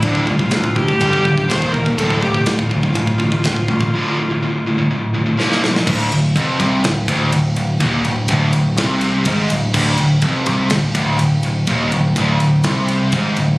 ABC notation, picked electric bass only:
X:1
M:4/4
L:1/8
Q:1/4=124
K:Dm
V:1 name="Picked electric bass" clef=bass
D,,, C,, D,,2 G,,, D,,, _E,,, E,,, | D,,, D,,, D,,, D,,, D,,, A,,, D,,, A,,, | z8 | D,,, D,,, F,,, C,, D,,, D,,, D,,, D,,, |
_E,,, D,,, D,,, D,,, C,,2 ^G,,, D,,, | D,,, D,,, F,,, C,, D,,, D,,, D,,, D,,, | _E,,, D,,, D,,, D,,, C,,2 ^G,,, D,,, |]